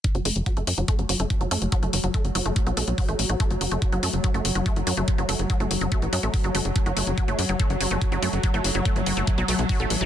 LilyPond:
<<
  \new Staff \with { instrumentName = "Synth arpeggio sound" } { \clef bass \time 4/4 \key fis \minor \tempo 4 = 143 r16 fis16 a16 r16 fis16 a16 r16 fis16 a16 r16 fis16 a16 r16 fis16 a16 r16 | fis16 a16 r16 fis16 a16 r16 fis16 a16 r16 fis16 a16 r16 fis16 a16 r16 fis16 | a16 r16 fis16 a16 r16 fis16 a16 r16 fis16 a16 r16 fis16 a16 r16 fis16 a16 | r16 fis16 a16 r16 fis16 a16 r16 fis16 a16 r16 fis16 a16 r16 fis16 a16 r16 |
r16 fis16 a16 r16 fis16 a16 r16 fis16 a16 r16 fis16 a16 r16 fis16 a16 r16 | fis16 a16 r16 fis16 a16 r16 fis16 a16 r16 fis16 a16 r16 fis16 a16 r16 fis16 | }
  \new Staff \with { instrumentName = "Synth drone" } { \clef bass \time 4/4 \key fis \minor fis1~ | fis1~ | fis1~ | fis1~ |
fis1~ | fis1 | }
  \new Staff \with { instrumentName = "Analog synth bass" } { \clef bass \time 4/4 \key fis \minor r16 fis,,16 fis,,16 fis,,16 r16 fis,,16 fis,16 fis,,16 r16 fis,,16 fis,,16 fis,,16 r16 fis,,16 fis,16 fis,,16 | r16 fis,,16 fis,,16 fis,,16 r16 fis,,16 fis,,16 fis,,16 r16 b,,16 b,,16 b,,16 r16 a,,16 a,,16 a,,16 | r16 fis,,16 fis,,16 fis,,16 r16 fis,,16 fis,16 fis,,16 r16 fis,,16 fis,,16 fis,,16 r16 fis,,16 fis,16 fis,,16 | r16 fis,,16 fis,,16 fis,,16 r16 fis,,16 fis,,16 fis,,16 r16 a,,16 fis,16 a,,16 r16 fis,,16 fis,,16 fis,,16 |
r16 fis,,16 fis,,16 fis,,16 r16 fis,,16 fis,16 fis,,16 r16 fis,,16 fis,,16 fis,,16 r16 fis,,16 fis,16 fis,,16 | r16 fis,,16 fis,,16 fis,,16 r16 fis,,16 fis,,16 fis,,16 r16 b,,16 b,,16 b,,16 r16 a,,16 a,,16 a,,16 | }
  \new DrumStaff \with { instrumentName = "Drums" } \drummode { \time 4/4 <hh bd>16 hh16 hho16 hh16 <hh bd>16 hh16 hho16 hh16 <hh bd>16 hh16 hho16 hh16 <hh bd>16 hh16 hho16 hh16 | <hh bd>16 hh16 hho16 hh16 <hh bd>16 hh16 hho16 hh16 <hh bd>16 hh16 hho16 hh16 <hho bd>16 hh16 hho16 hh16 | <hh bd>16 hh16 hho16 hh16 <hh bd>16 hh16 hho16 hh16 <hh bd>16 hh16 hho16 hh16 <hh bd>16 hh16 hho16 hh16 | <hh bd>16 hh16 hho16 hh16 <hh bd>16 hh16 hho16 hh16 <hh bd>16 hh16 hho16 hh16 <hho bd>16 hh16 hho16 hh16 |
<hh bd>16 hh16 hho16 hh16 <hh bd>16 hh16 hho16 hh16 <hh bd>16 hh16 hho16 hh16 <hh bd>16 hh16 hho16 hh16 | <hh bd>16 hh16 hho16 hh16 <hh bd>16 hh16 hho16 hh16 <hh bd>16 hh16 hho16 hh16 <hho bd>16 hh16 hho16 hh16 | }
>>